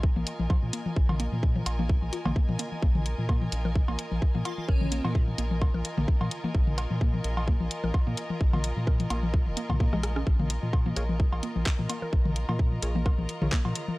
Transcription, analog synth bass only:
0, 0, Header, 1, 2, 480
1, 0, Start_track
1, 0, Tempo, 465116
1, 995, Time_signature, 4, 2, 24, 8
1, 14431, End_track
2, 0, Start_track
2, 0, Title_t, "Analog synth bass"
2, 0, Program_c, 0, 38
2, 0, Note_on_c, 0, 34, 104
2, 127, Note_off_c, 0, 34, 0
2, 167, Note_on_c, 0, 34, 92
2, 255, Note_off_c, 0, 34, 0
2, 407, Note_on_c, 0, 34, 101
2, 495, Note_off_c, 0, 34, 0
2, 647, Note_on_c, 0, 46, 83
2, 735, Note_off_c, 0, 46, 0
2, 995, Note_on_c, 0, 34, 101
2, 1327, Note_off_c, 0, 34, 0
2, 1366, Note_on_c, 0, 46, 77
2, 1682, Note_off_c, 0, 46, 0
2, 1714, Note_on_c, 0, 34, 99
2, 2047, Note_off_c, 0, 34, 0
2, 2087, Note_on_c, 0, 34, 86
2, 2175, Note_off_c, 0, 34, 0
2, 2326, Note_on_c, 0, 34, 98
2, 2414, Note_off_c, 0, 34, 0
2, 2566, Note_on_c, 0, 46, 88
2, 2654, Note_off_c, 0, 46, 0
2, 2915, Note_on_c, 0, 34, 99
2, 3247, Note_off_c, 0, 34, 0
2, 3287, Note_on_c, 0, 46, 79
2, 3602, Note_off_c, 0, 46, 0
2, 3635, Note_on_c, 0, 34, 101
2, 3967, Note_off_c, 0, 34, 0
2, 4007, Note_on_c, 0, 34, 87
2, 4095, Note_off_c, 0, 34, 0
2, 4247, Note_on_c, 0, 34, 98
2, 4335, Note_off_c, 0, 34, 0
2, 4487, Note_on_c, 0, 46, 83
2, 4575, Note_off_c, 0, 46, 0
2, 4835, Note_on_c, 0, 34, 98
2, 5167, Note_off_c, 0, 34, 0
2, 5207, Note_on_c, 0, 46, 80
2, 5522, Note_off_c, 0, 46, 0
2, 5555, Note_on_c, 0, 34, 104
2, 5887, Note_off_c, 0, 34, 0
2, 5926, Note_on_c, 0, 34, 91
2, 6014, Note_off_c, 0, 34, 0
2, 6167, Note_on_c, 0, 34, 101
2, 6254, Note_off_c, 0, 34, 0
2, 6407, Note_on_c, 0, 46, 86
2, 6494, Note_off_c, 0, 46, 0
2, 6755, Note_on_c, 0, 34, 93
2, 7087, Note_off_c, 0, 34, 0
2, 7127, Note_on_c, 0, 46, 78
2, 7442, Note_off_c, 0, 46, 0
2, 7475, Note_on_c, 0, 34, 103
2, 7807, Note_off_c, 0, 34, 0
2, 7846, Note_on_c, 0, 34, 86
2, 7934, Note_off_c, 0, 34, 0
2, 8087, Note_on_c, 0, 34, 101
2, 8175, Note_off_c, 0, 34, 0
2, 8327, Note_on_c, 0, 46, 83
2, 8415, Note_off_c, 0, 46, 0
2, 8675, Note_on_c, 0, 34, 100
2, 9007, Note_off_c, 0, 34, 0
2, 9047, Note_on_c, 0, 46, 78
2, 9362, Note_off_c, 0, 46, 0
2, 9395, Note_on_c, 0, 34, 102
2, 9767, Note_on_c, 0, 29, 87
2, 9782, Note_off_c, 0, 34, 0
2, 9855, Note_off_c, 0, 29, 0
2, 10007, Note_on_c, 0, 46, 92
2, 10197, Note_off_c, 0, 46, 0
2, 10247, Note_on_c, 0, 34, 96
2, 10563, Note_off_c, 0, 34, 0
2, 10595, Note_on_c, 0, 34, 96
2, 10927, Note_off_c, 0, 34, 0
2, 10967, Note_on_c, 0, 46, 78
2, 11282, Note_off_c, 0, 46, 0
2, 11315, Note_on_c, 0, 34, 104
2, 11647, Note_off_c, 0, 34, 0
2, 11687, Note_on_c, 0, 34, 91
2, 11775, Note_off_c, 0, 34, 0
2, 11928, Note_on_c, 0, 34, 96
2, 12015, Note_off_c, 0, 34, 0
2, 12167, Note_on_c, 0, 46, 86
2, 12255, Note_off_c, 0, 46, 0
2, 12516, Note_on_c, 0, 34, 99
2, 12847, Note_off_c, 0, 34, 0
2, 12887, Note_on_c, 0, 46, 81
2, 13202, Note_off_c, 0, 46, 0
2, 13236, Note_on_c, 0, 34, 102
2, 13567, Note_off_c, 0, 34, 0
2, 13607, Note_on_c, 0, 34, 90
2, 13695, Note_off_c, 0, 34, 0
2, 13847, Note_on_c, 0, 34, 98
2, 13935, Note_off_c, 0, 34, 0
2, 14087, Note_on_c, 0, 46, 89
2, 14175, Note_off_c, 0, 46, 0
2, 14431, End_track
0, 0, End_of_file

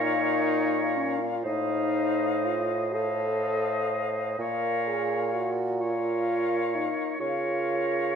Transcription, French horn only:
0, 0, Header, 1, 2, 480
1, 0, Start_track
1, 0, Key_signature, -5, "minor"
1, 0, Tempo, 981997
1, 703, Time_signature, 6, 3, 24, 8
1, 2147, Tempo, 937500
1, 4073, End_track
2, 0, Start_track
2, 0, Title_t, "French horn"
2, 0, Program_c, 0, 60
2, 0, Note_on_c, 0, 63, 108
2, 474, Note_on_c, 0, 61, 84
2, 482, Note_off_c, 0, 63, 0
2, 591, Note_on_c, 0, 65, 91
2, 598, Note_off_c, 0, 61, 0
2, 707, Note_off_c, 0, 65, 0
2, 716, Note_on_c, 0, 63, 104
2, 1198, Note_on_c, 0, 65, 94
2, 1206, Note_off_c, 0, 63, 0
2, 1441, Note_on_c, 0, 69, 108
2, 1448, Note_off_c, 0, 65, 0
2, 2150, Note_off_c, 0, 69, 0
2, 2391, Note_on_c, 0, 68, 91
2, 2628, Note_on_c, 0, 66, 92
2, 2636, Note_off_c, 0, 68, 0
2, 2873, Note_on_c, 0, 65, 106
2, 2881, Note_off_c, 0, 66, 0
2, 3356, Note_on_c, 0, 63, 84
2, 3364, Note_off_c, 0, 65, 0
2, 3581, Note_off_c, 0, 63, 0
2, 3584, Note_on_c, 0, 65, 97
2, 4073, Note_off_c, 0, 65, 0
2, 4073, End_track
0, 0, End_of_file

